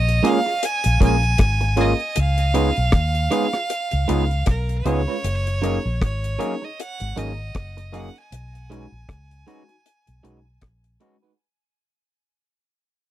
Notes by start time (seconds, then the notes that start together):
Already playing: A#1 D#5
0.09 closed hi-hat
0.23 G#3 A#3 C#4 F4 G#4 A#4 F5, closed hi-hat
0.46 F4 G#4, muted clean electric guitar stroke
0.63 G#5, closed hi-hat
0.84 A#1, closed hi-hat
1.00 A#1 G#3 A#3 C#4 F4 G#4 A#4 G#5, kick, closed hi-hat
1.23 closed hi-hat
1.38 G#1, kick, cross-stick, closed hi-hat
1.61 muted clean electric guitar stroke, closed hi-hat
1.76 G#3 A#3 C#4 F4 G#4 A#4, closed hi-hat
1.81 D#5
2.00 closed hi-hat
2.16 C#2 F5, closed hi-hat
2.38 closed hi-hat
2.54 G#3 B3 C#4 D#4 F4 G#4 B4, closed hi-hat
2.76 B1, closed hi-hat
2.92 D#2, kick, cross-stick, closed hi-hat
3.15 closed hi-hat
3.31 G#3 B3 C#4 D#4 F4 G#4 B4, cross-stick, closed hi-hat
3.53 G#4, muted clean electric guitar stroke, cross-stick, closed hi-hat
3.70 closed hi-hat
3.91 C#2, closed hi-hat
4.08 C#2 G#3 B3 C#4 D#4 F4 G#4 B4, closed hi-hat
4.31 closed hi-hat
4.46 B1, kick, cross-stick, closed hi-hat
4.50 A#4
4.69 closed hi-hat
4.85 C#2 G#3 B3 C#4 D#4 F4 G#4 B4 C#5, closed hi-hat
5.08 G#3 C#4 F4 B4
5.24 F#1, closed hi-hat
5.47 closed hi-hat
5.62 F#3 A#3 C#4 D#4 G#4 A#4, closed hi-hat
5.85 A#1
6.02 G#1 C#5, kick, cross-stick, closed hi-hat
6.24 closed hi-hat
6.39 F#3 A#3 C#4 D#4 G#4 A#4, closed hi-hat
6.62 D#4 G#4 D#5, muted clean electric guitar stroke
6.80 F#5, closed hi-hat
7.00 G#1, closed hi-hat
7.16 G#1 F#3 A#3 C#4 D#4 G#4 A#4 D#5, closed hi-hat
7.55 F#1, kick, cross-stick, closed hi-hat
7.77 muted clean electric guitar stroke, closed hi-hat
7.92 F#3 A#3 C#4 D#4 G#4 A#4 F#5, closed hi-hat
8.16 G#5, closed hi-hat
8.32 B1, closed hi-hat
8.55 closed hi-hat
8.70 G#3 C#4 D#4 F#4 B4, closed hi-hat
8.92 A#1
9.09 C#2, kick, cross-stick, closed hi-hat
9.31 closed hi-hat
9.47 G#3 C#4 D#4 F#4 B4, closed hi-hat
9.68 D#4 F#4, muted clean electric guitar stroke, closed hi-hat
9.86 closed hi-hat
10.07 B1, closed hi-hat
10.23 B1 G#3 C#4 D#4 F#4 B4, closed hi-hat
10.61 A#1, kick, cross-stick, closed hi-hat
10.84 closed hi-hat
11.00 G#3 C#4 D#4 F#4 B4, closed hi-hat
11.22 G#3 D#4 F#4 B4